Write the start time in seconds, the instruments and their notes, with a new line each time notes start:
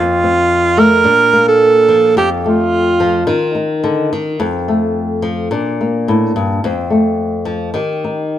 Already playing: nylon-string guitar F2 C4 F4, alto saxophone F4
0.24 nylon-string guitar C4
0.77 nylon-string guitar A3, alto saxophone A#4
1.04 nylon-string guitar A#2 D4
1.33 nylon-string guitar A#3
1.48 alto saxophone A4
1.89 nylon-string guitar F3
2.16 nylon-string guitar F2 C4, alto saxophone G4
2.46 nylon-string guitar A3, alto saxophone F4
3.00 nylon-string guitar F3
3.27 nylon-string guitar D#3 D#4
3.55 nylon-string guitar D#4
3.84 nylon-string guitar D3
4.13 nylon-string guitar D#3
4.40 nylon-string guitar F2 C4
4.68 nylon-string guitar A3
5.22 nylon-string guitar F3
5.51 nylon-string guitar A#2 D4
5.81 nylon-string guitar A#3
6.08 nylon-string guitar A2
6.36 nylon-string guitar G2
6.64 nylon-string guitar F2 C4
6.90 nylon-string guitar A3
7.45 nylon-string guitar F3
7.74 nylon-string guitar D#3 G4
8.04 nylon-string guitar D#4